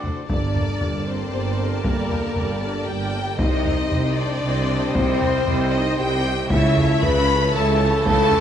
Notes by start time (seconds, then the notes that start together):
Already playing: A3 D4 F#4 A4 C5 D5
0.04 D2 F#3, taiko low
0.26 G1 D3 G3 A#3 D4 G4 A4 A#4 D5 A5, taiko
0.30 G2 D5
0.55 A4 A#4, taiko low
0.81 G1 G2 A4 D5, taiko low
1.05 C4 A4 A#4 C5
1.32 G1 G2 A4 D5
1.60 A4 A#4
1.82 G1 G2 A#3 A4 A#4 D5, taiko
2.10 A4 A#4, taiko low
2.35 G1 G2 A4 D5, taiko low
2.62 D4 A4 A#4 D5
2.86 G1 G2 G4 A4 D5 G5
3.17 A4 A#4
3.37 C2 C3 G3 C4 D#4 C5 D#5 G5, taiko
3.41 C5 D#5
3.65 C5 D#5, taiko low
3.91 C2 C3 C5 D#5, taiko low
4.17 D4 C5 D5 D#5
4.43 C2 C3 C5 D#5
4.69 C5 D#5
4.93 C2 C3 C4 C5 D#5, taiko
5.21 C5 D#5, taiko low
5.46 C2 C3 C5 D#5, taiko low
5.71 D#4 C5 D#5
5.98 C2 C3 G4 C5 D#5 G5
6.25 C5 D#5
6.49 C#2 C#3 E3 A3 C#4 E4 A4 C#5 E5 A5, taiko
6.76 A4 C#5, taiko low
7.02 C#2 C#3 B4 C#5 E5 B5, taiko low
7.28 A4 C#5
7.53 C#2 C#3 A4 C#5 E5 A5
7.80 A4 C#5
8.05 C#2 C#3 A4 C#5 E5 A5, taiko
8.31 A4 C#5, taiko low